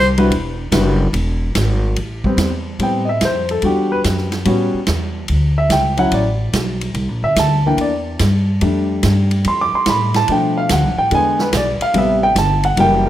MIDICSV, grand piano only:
0, 0, Header, 1, 2, 480
1, 0, Start_track
1, 0, Key_signature, 0, "minor"
1, 0, Tempo, 415225
1, 362, Time_signature, 4, 2, 24, 8
1, 15136, End_track
2, 0, Start_track
2, 0, Title_t, "Grand piano"
2, 0, Program_c, 0, 0
2, 204, Note_on_c, 0, 62, 68
2, 206, Note_on_c, 0, 55, 72
2, 207, Note_on_c, 0, 64, 67
2, 211, Note_on_c, 0, 66, 74
2, 213, Note_on_c, 0, 71, 86
2, 346, Note_off_c, 0, 62, 0
2, 347, Note_off_c, 0, 55, 0
2, 347, Note_off_c, 0, 64, 0
2, 349, Note_off_c, 0, 66, 0
2, 350, Note_off_c, 0, 71, 0
2, 835, Note_on_c, 0, 55, 68
2, 835, Note_on_c, 0, 62, 60
2, 835, Note_on_c, 0, 64, 60
2, 836, Note_on_c, 0, 66, 58
2, 839, Note_on_c, 0, 71, 72
2, 1127, Note_off_c, 0, 55, 0
2, 1127, Note_off_c, 0, 62, 0
2, 1127, Note_off_c, 0, 64, 0
2, 1128, Note_off_c, 0, 66, 0
2, 1129, Note_off_c, 0, 71, 0
2, 2603, Note_on_c, 0, 55, 46
2, 2606, Note_on_c, 0, 59, 46
2, 2618, Note_on_c, 0, 60, 56
2, 2874, Note_off_c, 0, 55, 0
2, 2875, Note_off_c, 0, 59, 0
2, 2882, Note_off_c, 0, 60, 0
2, 3239, Note_on_c, 0, 55, 42
2, 3243, Note_on_c, 0, 59, 41
2, 3245, Note_on_c, 0, 60, 48
2, 3271, Note_on_c, 0, 79, 73
2, 3527, Note_on_c, 0, 75, 53
2, 3528, Note_off_c, 0, 55, 0
2, 3531, Note_off_c, 0, 59, 0
2, 3532, Note_off_c, 0, 60, 0
2, 3549, Note_off_c, 0, 75, 0
2, 3567, Note_off_c, 0, 79, 0
2, 3574, Note_on_c, 0, 76, 73
2, 3720, Note_off_c, 0, 76, 0
2, 3754, Note_on_c, 0, 72, 75
2, 4049, Note_off_c, 0, 72, 0
2, 4056, Note_on_c, 0, 69, 72
2, 4195, Note_on_c, 0, 55, 48
2, 4201, Note_off_c, 0, 69, 0
2, 4205, Note_on_c, 0, 62, 41
2, 4212, Note_on_c, 0, 66, 51
2, 4235, Note_on_c, 0, 67, 62
2, 4529, Note_off_c, 0, 67, 0
2, 4529, Note_on_c, 0, 71, 79
2, 4621, Note_off_c, 0, 71, 0
2, 4959, Note_off_c, 0, 55, 0
2, 4964, Note_off_c, 0, 62, 0
2, 4968, Note_off_c, 0, 66, 0
2, 5148, Note_on_c, 0, 55, 50
2, 5150, Note_on_c, 0, 59, 46
2, 5156, Note_on_c, 0, 61, 51
2, 5165, Note_on_c, 0, 66, 58
2, 5519, Note_off_c, 0, 55, 0
2, 5520, Note_off_c, 0, 59, 0
2, 5523, Note_off_c, 0, 61, 0
2, 5528, Note_off_c, 0, 66, 0
2, 6449, Note_on_c, 0, 76, 80
2, 6598, Note_off_c, 0, 76, 0
2, 6616, Note_on_c, 0, 79, 85
2, 6904, Note_on_c, 0, 54, 53
2, 6916, Note_on_c, 0, 61, 48
2, 6918, Note_on_c, 0, 64, 59
2, 6920, Note_off_c, 0, 79, 0
2, 6925, Note_on_c, 0, 78, 86
2, 7076, Note_off_c, 0, 78, 0
2, 7099, Note_on_c, 0, 74, 69
2, 7184, Note_off_c, 0, 54, 0
2, 7191, Note_off_c, 0, 61, 0
2, 7192, Note_off_c, 0, 64, 0
2, 7845, Note_off_c, 0, 74, 0
2, 8368, Note_on_c, 0, 76, 85
2, 8518, Note_off_c, 0, 76, 0
2, 8549, Note_on_c, 0, 81, 86
2, 8847, Note_off_c, 0, 81, 0
2, 8854, Note_on_c, 0, 52, 49
2, 8858, Note_on_c, 0, 58, 48
2, 8866, Note_on_c, 0, 62, 56
2, 8868, Note_on_c, 0, 79, 75
2, 9008, Note_off_c, 0, 79, 0
2, 9029, Note_on_c, 0, 74, 69
2, 9121, Note_off_c, 0, 52, 0
2, 9122, Note_off_c, 0, 58, 0
2, 9127, Note_off_c, 0, 62, 0
2, 9770, Note_off_c, 0, 74, 0
2, 9960, Note_on_c, 0, 55, 48
2, 9964, Note_on_c, 0, 57, 42
2, 9972, Note_on_c, 0, 62, 54
2, 10956, Note_on_c, 0, 84, 76
2, 11094, Note_off_c, 0, 84, 0
2, 11114, Note_on_c, 0, 86, 95
2, 11252, Note_off_c, 0, 86, 0
2, 11274, Note_on_c, 0, 84, 76
2, 11412, Note_off_c, 0, 84, 0
2, 11438, Note_on_c, 0, 83, 95
2, 11732, Note_off_c, 0, 83, 0
2, 11748, Note_on_c, 0, 81, 95
2, 11834, Note_off_c, 0, 55, 0
2, 11836, Note_off_c, 0, 57, 0
2, 11840, Note_off_c, 0, 62, 0
2, 11889, Note_off_c, 0, 81, 0
2, 11892, Note_on_c, 0, 53, 47
2, 11898, Note_on_c, 0, 57, 46
2, 11906, Note_on_c, 0, 62, 50
2, 11928, Note_on_c, 0, 79, 71
2, 12217, Note_off_c, 0, 79, 0
2, 12225, Note_on_c, 0, 77, 82
2, 12367, Note_off_c, 0, 77, 0
2, 12397, Note_on_c, 0, 78, 74
2, 12648, Note_off_c, 0, 53, 0
2, 12651, Note_off_c, 0, 57, 0
2, 12655, Note_off_c, 0, 62, 0
2, 12691, Note_off_c, 0, 78, 0
2, 12699, Note_on_c, 0, 79, 88
2, 12844, Note_off_c, 0, 79, 0
2, 12849, Note_on_c, 0, 50, 50
2, 12853, Note_on_c, 0, 56, 50
2, 12864, Note_on_c, 0, 59, 59
2, 12885, Note_on_c, 0, 80, 91
2, 13175, Note_off_c, 0, 80, 0
2, 13191, Note_on_c, 0, 71, 62
2, 13210, Note_off_c, 0, 50, 0
2, 13213, Note_off_c, 0, 56, 0
2, 13219, Note_off_c, 0, 59, 0
2, 13330, Note_off_c, 0, 71, 0
2, 13373, Note_on_c, 0, 74, 79
2, 13660, Note_off_c, 0, 74, 0
2, 13667, Note_on_c, 0, 77, 96
2, 13804, Note_on_c, 0, 48, 51
2, 13808, Note_off_c, 0, 77, 0
2, 13812, Note_on_c, 0, 55, 49
2, 13822, Note_on_c, 0, 59, 57
2, 13847, Note_on_c, 0, 76, 75
2, 14136, Note_off_c, 0, 76, 0
2, 14142, Note_on_c, 0, 79, 97
2, 14168, Note_off_c, 0, 48, 0
2, 14172, Note_off_c, 0, 55, 0
2, 14177, Note_off_c, 0, 59, 0
2, 14285, Note_off_c, 0, 79, 0
2, 14316, Note_on_c, 0, 81, 89
2, 14611, Note_off_c, 0, 81, 0
2, 14622, Note_on_c, 0, 78, 80
2, 14765, Note_off_c, 0, 78, 0
2, 14765, Note_on_c, 0, 52, 53
2, 14773, Note_on_c, 0, 55, 54
2, 14784, Note_on_c, 0, 58, 64
2, 14800, Note_on_c, 0, 79, 104
2, 15093, Note_off_c, 0, 79, 0
2, 15129, Note_off_c, 0, 52, 0
2, 15132, Note_off_c, 0, 55, 0
2, 15136, Note_off_c, 0, 58, 0
2, 15136, End_track
0, 0, End_of_file